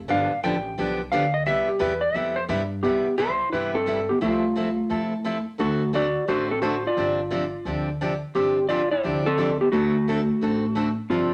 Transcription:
0.08 G1 D3 F3 B3 D4 G4 F5
0.32 muted upright bass stroke
0.43 A1 D3 F3 B3 D4 G4 G5
0.78 B1 D3 F3 B3 D4 G4
1.12 D2 D3 F3 B3 D4 G4 F5
1.34 D#5
1.46 C2 C3 G3 B3 E4 G4 E5
1.68 G4
1.79 E2 C3 G3 B3 E4 G4 B4
2.01 D5
2.14 F2 C3 G3 B3 E4 G4 E5
2.36 C5
2.48 G2 C3 G3 B3 E4 G4
2.83 C2 C3 G3 B3 E4 G4
3.18 C3 G3 B3 E4 G4 C5
3.53 G2 C3 G3 B3 E4 G4 B4
3.74 C4 A4
3.86 C3 G3 B3 E4 G4
4.09 B3 G4
4.21 C2 C3 F3 A3 C4 E4 F4 A4
4.56 C3 F3 C4 E4 A4
4.89 F2 C3 F3 C4 E4 A4
5.02 E4
5.24 C3 F3 C4 E4 A4
5.58 D2 D3 A3 C4 F#4 A4
5.93 D3 A3 C4 F#4 A4 D5
6.28 A1 D3 A3 C4 F#4 A4 C5
6.51 C4 A4
6.62 D3 A3 C4 F#4 A4 C5
6.87 F4 D5
6.97 G1 C3 F3 C4 D4 G4
7.31 C3 F3 C4 D4 G4
7.65 D2 C3 F3 C4 D4 G4
8.01 C3 F3 C4 D4 G4
8.35 G1 C3 F3 C4 D4 G4
8.69 C3 F3 C4 D4 F4 G4 D5
8.91 E4 C5
9.03 D2 C3 F3 C4 D4 G4
9.26 C4 A4
9.37 C3 F3 C4 D4 G4
9.61 B3 G4
9.72 D2 D3 A3 C4 F#4 A4
10.08 D3 A3 C4 F#4 A4
10.41 A1 D3 A3 C4 F#4 A4
10.75 D3 A3 C4 F#4 A4
11.10 G1 C3 F3 C4 D4 F4 G4

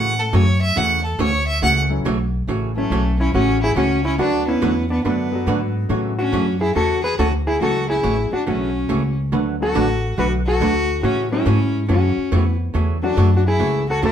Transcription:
Already playing: A2 C#3 E3 F#3 A3 C#4 E4 F#4 F#5
0.19 A4
0.33 F#2 C#3 E3 A3 C#4 F#4 C#5
0.62 E5
0.76 E2 C#3 E3 A3 C#4 F#4 F#5
1.04 A4
1.18 D2 C#3 E3 A3 C#4 F#4 C#5
1.47 E5
1.62 C#2 C#3 E3 A3 C#4 F#4 F#5
1.89 E3 F#3 A3 C#4 E4
2.05 B1 C#3 E3 A3 C#4 F#4
2.47 A1 C#3 E3 A3 C#4 F#4
2.76 E3 F#3 A3 C#4 E4
2.90 B1 C#3 E3 A3 C#4 F#4
3.20 C#4 E4
3.34 A1 C#3 E3 A3 C#4 F#4
3.62 E4 G#4
3.76 C#2 C#3 E3 A3 C#4 F#4
4.05 C#4 E4
4.18 D2 D3 F#3 A3 D4 F#4 B4
4.48 B3 C#4 E4
4.61 E2 D3 F#3 A3 D4 F#4 B4
4.90 B3 D4
5.04 F#2 D3 F#3 A3 B3 D4 F#4 B4
5.31 F#3 B3 D4 F#4 A4
5.46 G#2 D3 F#3 A3 D4 F#4 B4
5.89 A2 C#3 E3 F#3 A3 C#4 E4 F#4
6.19 C#4 D4 F#4
6.32 F#2 C#3 E3 A3 C#4 F#4
6.61 E4 G#4
6.75 E2 C#3 E3 A3 C#4 F#4 A4
7.03 G#4 B4
7.19 D2 C#3 E3 A3 C#4 F#4 A4
7.47 E4 G#4
7.60 C#2 C#3 E3 F#3 A3 C#4 E4 F#4 A4
7.89 E4 G#4
8.03 A1 C#3 E3 A3 C#4 F#4
8.32 D4 F#4, muted upright bass stroke
8.47 B1 C#3 E3 A3 C#4 F#4
8.89 C#2 C#3 E3 A3 C#4 F#4
9.32 D2 D3 F#3 A3 D4 F#4 B4
9.60 F#3 A3 B3 D4 F#4 A4
9.75 A1 D3 F#3 A3 D4 F#4 B4
10.18 B1 D3 F#3 A3 D4 F#4 B4
10.47 F#4 A4
10.60 D2 D3 F#3 A3 D4 F#4 B4
11.03 A2 C#3 E3 A3 C#4 F#4
11.31 F#3 A3 C#4 E4 F#4
11.46 G#2 C#3 E3 A3 C#4 F#4
11.88 F#2 C#3 E3 A3 C#4 F#4
12.17 muted upright bass stroke
12.32 F2 C#3 E3 A3 C#4 F#4
12.39 B3 E4
12.74 E2 C#3 E3 A3 C#4 F#4
13.02 F#3 A3 C#4 D4 E4 F#4
13.17 F#2 C#3 E3 A3 C#4 F#4
13.36 D4 F#4
13.46 E4 G#4
13.59 C#2 C#3 E3 A3 C#4 F#4
13.89 F#4 A4
14.02 E2 C#3 E3 A3 C#4 F#4 B4

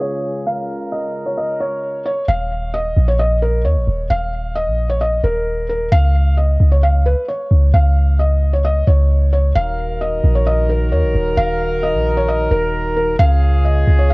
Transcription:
Already playing: C#2 C#3 F4 G#4
0.01 C#5
0.47 A#4 F5
0.92 D#5
1.26 C#5
1.37 D#5
1.60 C#5
2.06 C#5
2.28 D#1 F5
2.74 D#5
2.97 A#1
3.08 C#5
3.19 D#5
3.42 A#4
3.65 D#2 C#5
3.76 A#1
3.87 D#1
4.10 D#1 F5
4.55 D#5
4.67 A#1
4.90 C#5
5.01 D#5
5.24 D#1 A#4
5.69 A#4
5.92 C#2 F5
6.37 D#5
6.60 C#2
6.72 C#5
6.83 F5
7.06 B4
7.28 C#5
7.51 C#2
7.74 C#2 F5
8.19 D#5
8.53 C#5
8.65 D#5
8.87 C#2 C#5
9.33 C#5
9.55 D#1 D#3 D#4 F#4 A#4 F5
10.01 D#5
10.24 A#1
10.35 C#5
10.47 D#5
10.69 A#4
10.92 D#2 C#5
11.03 A#1
11.15 D#1
11.37 D#1 F5
11.83 D#5
11.94 A#1
12.17 C#5
12.28 D#5
12.51 D#1 A#4
12.97 A#4
13.19 C#2 C#3 C#4 F4 G#4 F5
13.65 D#5
13.87 C#2
13.99 C#5
14.10 F5

